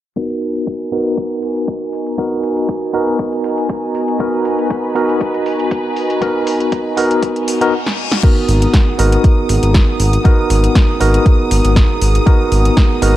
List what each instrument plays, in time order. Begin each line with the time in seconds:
0.16 tine electric piano B3 D#4 F#4 A#4, analog synth pad B3 F#4 D#5 G#5 A#5, kick, closed hi-hat
0.42 open hi-hat
0.55 closed hi-hat
0.67 kick, closed hi-hat
0.92 tine electric piano B3 D#4 F#4 A#4, open hi-hat
1.06 closed hi-hat
1.17 kick, closed hi-hat
1.31 closed hi-hat
1.42 open hi-hat
1.56 closed hi-hat
1.68 kick, closed hi-hat
1.93 open hi-hat
2.07 closed hi-hat
2.18 tine electric piano B3 D#4 F#4 A#4, kick, closed hi-hat
2.43 open hi-hat
2.57 closed hi-hat
2.69 kick, closed hi-hat
2.93 tine electric piano B3 D#4 F#4 A#4, open hi-hat
3.07 closed hi-hat
3.19 kick, closed hi-hat
3.33 closed hi-hat
3.44 open hi-hat
3.58 closed hi-hat
3.69 kick, closed hi-hat
3.95 open hi-hat
4.08 closed hi-hat
4.19 tine electric piano B3 D#4 F#4 A#4, violin section B4, kick, closed hi-hat
4.45 open hi-hat
4.59 closed hi-hat
4.70 kick, closed hi-hat
4.95 tine electric piano B3 D#4 F#4 A#4, open hi-hat
5.09 closed hi-hat
5.21 kick, closed hi-hat
5.34 closed hi-hat
5.46 open hi-hat
5.60 closed hi-hat
5.71 kick, closed hi-hat
5.96 open hi-hat
6.10 closed hi-hat
6.21 tine electric piano B3 D#4 F#4 A#4, kick, closed hi-hat
6.47 open hi-hat
6.60 closed hi-hat
6.72 kick, closed hi-hat
6.97 tine electric piano B3 D#4 F#4 A#4, open hi-hat
7.11 closed hi-hat
7.23 kick, closed hi-hat, reverse cymbal
7.36 closed hi-hat
7.48 open hi-hat
7.61 tine electric piano B3 D#4 F#4 A#4, closed hi-hat
7.87 snare
8.12 snare
8.23 tine electric piano B3 D#4 F#4 A#4, analog synth pad B3 G#4 F#5 A#5, violin section D#6, kick, closed hi-hat, crash
8.48 analog synth bass G#1, open hi-hat
8.62 closed hi-hat
8.74 kick, snare, closed hi-hat
8.98 analog synth bass G#1, tine electric piano B3 D#4 F#4 A#4, open hi-hat
9.12 closed hi-hat
9.24 kick, closed hi-hat
9.49 analog synth bass G#1, open hi-hat
9.63 analog synth bass G#1, closed hi-hat
9.74 kick, snare, closed hi-hat
10.00 analog synth bass G#1, open hi-hat
10.13 closed hi-hat
10.24 tine electric piano B3 D#4 F#4 A#4, kick, closed hi-hat
10.50 analog synth bass G#1, open hi-hat
10.64 closed hi-hat
10.75 kick, snare, closed hi-hat
11.00 analog synth bass G#1, tine electric piano B3 D#4 F#4 A#4, open hi-hat
11.14 closed hi-hat
11.26 kick, closed hi-hat
11.51 analog synth bass G#1, open hi-hat
11.65 analog synth bass G#1, closed hi-hat
11.76 kick, snare, closed hi-hat
12.01 analog synth bass G#1, open hi-hat
12.15 closed hi-hat
12.26 tine electric piano B3 D#4 F#4 A#4, kick, closed hi-hat
12.52 analog synth bass G#1, open hi-hat
12.65 closed hi-hat
12.77 kick, snare, closed hi-hat
13.02 analog synth bass G#1, tine electric piano B3 D#4 F#4 A#4, open hi-hat